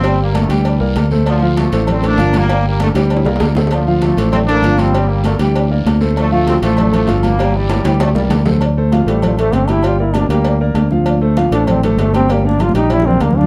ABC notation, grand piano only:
X:1
M:4/4
L:1/8
Q:1/4=196
K:Dm
V:1 name="Grand piano"
[G,Gg]2 [B,Bd] [G,Gg]2 [B,Bd]2 [A,Ac]- | [A,Ac] [F,Ff]2 [A,Ac]2 [A,Ac] [F,Ff]2 | [G,Gg]2 [B,Bd] [G,Gg]2 [B,Bd]2 [A,Ac]- | [A,Ac] [F,Ff]2 [A,Ac]2 [A,Ac] [F,Ff]2 |
[G,Gg]2 [B,Bd] [G,Gg]2 [B,Bd]2 [A,Ac]- | [A,Ac] [F,Ff]2 [A,Ac]2 [A,Ac] [F,Ff]2 | [G,Gg]2 [B,Bd] [G,Gg]2 [B,Bd]2 [A,Ac] | z [A,Ac] [F,Ff] [A,Ac]2 [A,Ac]2 [G,Gg] |
[G,Gg] [B,Bd]2 [G,Gg]2 [B,Bd]2 [F,Ff]- | [F,Ff] [A,Ac] [F,Ff] [A,Ac]2 [A,Ac]2 [G,Gg] | [G,Gg] [B,Bd]2 [G,Gg]2 [B,Bd]2 [F,Ff] |]